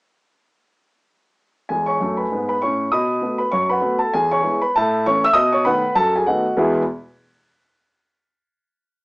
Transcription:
1.69 1.93 E2 medium
1.69 1.94 G#3 medium
1.69 1.86 G#4 soft
1.69 1.86 G#5 medium
1.86 2.15 C#5 soft
1.86 2.15 G#5 soft
1.86 2.17 C#6 medium
2.00 2.24 F#2 medium
2.00 2.25 A3 medium
2.17 2.46 B4 soft
2.17 2.46 G#5 soft
2.17 2.47 B5 soft
2.32 2.55 G#2 medium
2.32 2.56 B3 medium
2.49 2.60 B4 medium
2.49 2.60 B5 medium
2.62 2.86 A2 medium
2.62 2.87 C#4 medium
2.62 2.90 C#5 medium
2.62 2.91 C#6 medium
2.92 3.17 B2 medium
2.92 3.37 D#5 medium
2.92 3.37 B5 medium
2.92 3.39 D#6 medium
3.21 3.38 A3 soft
3.21 3.39 B3 soft
3.21 3.39 F#4 soft
3.38 3.51 B4 soft
3.38 3.51 B5 medium
3.51 3.78 F#2 medium
3.51 3.69 C#5 medium
3.51 3.69 C#6 medium
3.69 3.98 B4 medium
3.69 3.99 F#5 medium
3.69 4.00 B5 medium
3.81 3.98 A3 soft
3.81 3.98 B3 soft
3.81 3.99 F#4 soft
3.99 4.11 A4 medium
3.99 4.12 A5 medium
4.13 4.39 E2 medium
4.13 4.30 G#4 medium
4.13 4.30 G#5 medium
4.31 4.60 C#5 medium
4.31 4.60 G#5 medium
4.31 4.61 C#6 medium
4.42 4.59 G#3 soft
4.42 4.60 B3 soft
4.42 4.60 E4 soft
4.62 4.73 B4 medium
4.62 4.74 B5 medium
4.76 5.01 A2 medium
4.76 5.04 A4 medium
4.76 5.04 E5 medium
4.76 5.05 A5 medium
5.06 5.22 E3 soft
5.06 5.23 A3 soft
5.06 5.23 C#4 medium
5.06 5.23 C#5 medium
5.06 5.23 C#6 medium
5.24 5.35 E5 medium
5.24 5.36 E6 loud
5.33 5.60 B2 medium
5.33 5.52 D#5 medium
5.33 5.52 D#6 loud
5.52 5.65 C#5 medium
5.52 5.65 C#6 medium
5.65 5.82 D#3 medium
5.65 5.83 A3 soft
5.65 5.83 B3 medium
5.65 5.94 B4 medium
5.65 5.94 F#5 medium
5.65 5.96 B5 medium
5.95 6.22 F#2 medium
5.95 6.13 A4 medium
5.95 6.14 A5 loud
6.16 6.27 G#4 medium
6.16 6.27 G#5 medium
6.27 6.44 D#3 soft
6.27 6.45 A3 soft
6.27 6.45 B3 soft
6.27 6.56 F#4 medium
6.27 6.56 D#5 medium
6.27 6.57 F#5 medium
6.57 6.76 E2 medium
6.57 6.76 B2 medium
6.57 6.76 G#3 medium
6.57 6.77 B3 medium
6.57 6.77 E4 medium
6.57 6.77 G#4 medium
6.57 6.77 E5 medium

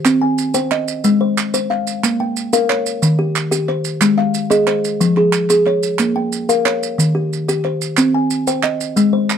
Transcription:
0.00 0.22 C5 medium
0.05 0.38 C4 medium
0.05 clap medium
0.05 maracas medium
0.22 0.71 G#5 medium
0.38 maracas medium
0.54 0.88 C5 medium
0.54 1.04 G5 medium
0.54 maracas medium
0.71 1.21 D#5 medium
0.71 clap medium
0.88 maracas medium
1.04 1.37 G#3 medium
1.04 maracas medium
1.21 1.53 C5 medium
1.38 clap medium
1.38 maracas medium
1.54 1.87 C5 medium
1.54 maracas medium
1.70 2.20 F5 medium
1.70 clap soft
1.87 maracas medium
2.03 2.36 A#3 medium
2.03 clap medium
2.03 maracas medium
2.20 2.70 G5 medium
2.37 maracas medium
2.53 2.86 A#4 medium
2.53 3.02 F5 medium
2.53 maracas medium
2.70 3.19 C#5 medium
2.70 clap medium
2.86 maracas medium
3.02 3.35 D#3 medium
3.02 maracas medium
3.19 3.50 G4 medium
3.36 clap medium
3.36 maracas medium
3.51 3.85 G4 medium
3.51 maracas medium
3.69 4.18 C5 medium
3.69 clap soft
3.85 maracas medium
4.01 4.34 G#3 medium
4.01 clap medium
4.01 maracas medium
4.18 4.67 F5 medium
4.18 clap soft
4.34 maracas medium
4.50 4.84 G#4 medium
4.50 5.00 D#5 medium
4.50 clap soft
4.50 maracas medium
4.67 5.17 C5 medium
4.67 clap medium
4.85 maracas medium
5.00 5.33 F3 medium
5.00 maracas medium
5.17 5.49 G#4 medium
5.17 clap soft
5.33 clap medium
5.33 maracas medium
5.50 5.83 G#4 medium
5.50 clap soft
5.50 maracas medium
5.66 6.16 C#5 medium
5.66 clap soft
5.83 maracas medium
5.99 6.33 A#3 medium
5.99 clap medium
5.99 maracas medium
6.16 6.65 G5 medium
6.32 maracas medium
6.49 6.82 A#4 medium
6.49 6.99 F5 medium
6.49 maracas medium
6.65 7.15 C#5 medium
6.65 clap medium
6.83 maracas medium
6.98 7.31 D#3 medium
6.98 maracas medium
7.15 7.47 G4 medium
7.33 maracas medium
7.48 7.81 G4 medium
7.48 maracas medium
7.65 8.14 C5 medium
7.65 clap soft
7.81 maracas medium
7.97 8.31 C4 medium
7.97 clap medium
7.97 maracas medium
8.14 8.64 G#5 medium
8.30 maracas medium
8.47 8.80 C5 medium
8.47 8.97 G5 medium
8.47 maracas medium
8.63 9.13 D#5 medium
8.63 clap medium
8.81 maracas medium
8.96 9.30 G#3 medium
8.96 maracas medium
9.13 9.38 C5 medium
9.30 clap medium
9.30 maracas medium

